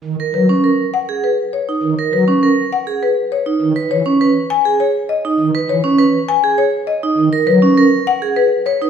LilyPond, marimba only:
\new Staff \with { instrumentName = "Marimba" } { \time 3/4 \key gis \minor \tempo 4 = 101 r8 b'16 r8. fis''16 r16 b'16 r16 cis''16 r16 | r8 b'16 r8. fis''16 r16 b'16 r16 cis''16 r16 | r8 cis''16 r8. gis''16 r16 cis''16 r16 dis''16 r16 | r8 cis''16 r8. gis''16 r16 cis''16 r16 dis''16 r16 |
r8 b'16 r8. fis''16 r16 b'16 r16 cis''16 r16 | }